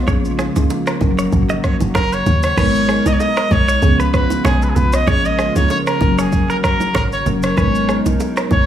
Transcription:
Already playing: C#3 G#3 F4
0.07 A#1 F3 A#3 C#4 G#4 C#5, kick, low conga, shaker
0.25 shaker
0.39 G#4, cross-stick, low bongo, shaker
0.56 C#2 F3 A#3 C#4 G#4, low bongo, shaker
0.70 high bongo, shaker
0.87 A#4, cross-stick, shaker
1.01 F#1 F#3 A#3 C#4 F#4 A#4, kick, low bongo, shaker
1.19 C#5, shaker
1.32 G#1, kick, low conga, shaker
1.49 D#5, high bongo, shaker
1.64 C#5, kick, cross-stick, shaker
1.80 F#1, low bongo, shaker
1.95 F#1 A#4, kick, cross-stick, high bongo, shaker
2.12 C#5, shaker
2.26 D#2, high bongo, low conga, shaker
2.43 C#5, cross-stick, shaker
2.57 G#1 B2 G#3 B3 D#4 A#4 B4 C#5, kick, crash, low conga, shaker
2.75 shaker
2.89 G#4, cross-stick, shaker
3.06 B1 D#5, low bongo, shaker
3.13 C#5
3.19 D#5, high bongo, shaker
3.37 A#4, cross-stick, shaker
3.51 B1 C#5, kick, low bongo, shaker
3.68 C#5, shaker
3.82 C#2 C#3 F3 B3 C#4 F4 G#4, kick, low conga, shaker
4.00 B4, shaker
4.14 B4, kick, cross-stick, shaker
4.30 low bongo, shaker
4.45 B1 G#4 C#5, cross-stick, high bongo, shaker
4.62 B4, shaker
4.69 G#4
4.76 B1 B4, high bongo, low conga, shaker
4.93 D#5, cross-stick, shaker
5.07 A#1 F3 G#3 A#3 C#4 F4 G#4 A#4 C#5, kick, low conga, shaker
5.25 D#5, shaker
5.39 G#4, cross-stick, shaker
5.56 C#2 F3 A#3 C#4 G#4 C#5, low bongo, shaker
5.70 C#5, high bongo, shaker
5.87 A#4, cross-stick, shaker
6.01 F#1 F#3 A#3 C#4 F#4 A#4, kick, low bongo, shaker
6.18 G#4 C#5, shaker
6.32 kick, low conga, shaker
6.50 A#4, shaker
6.64 A#4, kick, cross-stick, shaker
6.80 low bongo, shaker
6.95 G#1 A#4 C#5, kick, cross-stick, high bongo, shaker
7.12 C#5, shaker
7.26 F#1 F#3 A#3 C#4 A#4, high bongo, low conga, shaker
7.43 C#5, cross-stick, shaker
7.57 G#1 B2 G#3 B3 D#4 A#4 B4 C#5, kick, low conga, shaker
7.75 shaker
7.89 G#4, cross-stick, shaker
8.06 B1, low bongo, shaker
8.20 high bongo, shaker
8.37 A#4, cross-stick, shaker
8.51 B1 C#5, kick, low bongo, shaker

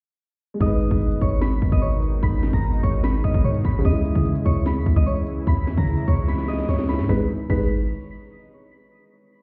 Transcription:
0.54 G#3
0.60 G#1 B2 D#3 G#3 D#4 D#5 D#6, kick, closed hi-hat
0.66 B4
0.71 closed hi-hat
0.81 closed hi-hat
0.91 G#1, kick, closed hi-hat
1.01 closed hi-hat
1.11 F#1, closed hi-hat
1.21 G#1 C#5 C#6, kick, closed hi-hat
1.41 B5 B6, snare, closed hi-hat
1.52 closed hi-hat
1.62 G#1, kick, closed hi-hat
1.72 D#5 D#6, kick, closed hi-hat
1.82 C#5 C#6, closed hi-hat
1.92 closed hi-hat
2.02 closed hi-hat
2.23 G#1 B5 B6, kick, closed hi-hat
2.33 closed hi-hat
2.43 snare, closed hi-hat
2.53 G#1 A#5 A#6, kick, closed hi-hat
2.63 closed hi-hat
2.73 closed hi-hat
2.83 G#1 C#5 C#6, kick, closed hi-hat
3.04 B5 B6, snare, closed hi-hat
3.14 closed hi-hat
3.24 G#1 D#5 D#6, kick, closed hi-hat
3.34 kick, closed hi-hat
3.44 G#2 C#5 C#6, closed hi-hat
3.55 closed hi-hat
3.65 G#1 B5 B6, kick, closed hi-hat
3.79 C#3
3.85 C#2 C#3 E3 G#3 E4 D#5 D#6, kick, closed hi-hat
3.91 E4
3.95 closed hi-hat
4.05 closed hi-hat
4.15 C#3, kick, closed hi-hat
4.25 closed hi-hat
4.36 closed hi-hat
4.45 C#2 C#5 C#6, kick, closed hi-hat
4.66 B5 B6, snare, closed hi-hat
4.76 D#2, closed hi-hat
4.86 C#2, kick, closed hi-hat
4.96 C#2 D#5 D#6, kick, closed hi-hat
5.06 C#5 C#6, closed hi-hat
5.17 closed hi-hat
5.27 closed hi-hat
5.47 C#2 B5 B6, kick, closed hi-hat
5.57 closed hi-hat
5.67 E2, snare, closed hi-hat
5.77 C#3 A#5 A#6, kick, closed hi-hat
5.88 closed hi-hat
5.98 closed hi-hat
6.08 C#2 C#5 C#6, kick, open hi-hat
6.28 B5 B6, snare, closed hi-hat
6.33 snare
6.38 snare, closed hi-hat
6.43 snare
6.48 D#5 D#6, snare, closed hi-hat
6.53 snare
6.59 snare, closed hi-hat
6.64 snare
6.69 C#2 C#5 C#6, snare, closed hi-hat
6.74 snare
6.79 snare, closed hi-hat
6.84 snare
6.89 B5 B6, snare, closed hi-hat
6.94 snare
6.99 G#2, snare
7.04 snare
7.09 G#1 B2 D#3 G#3 D#4 B4 B6, kick, snare
7.50 G#1 G#3 D#4 B4 B6, kick, crash

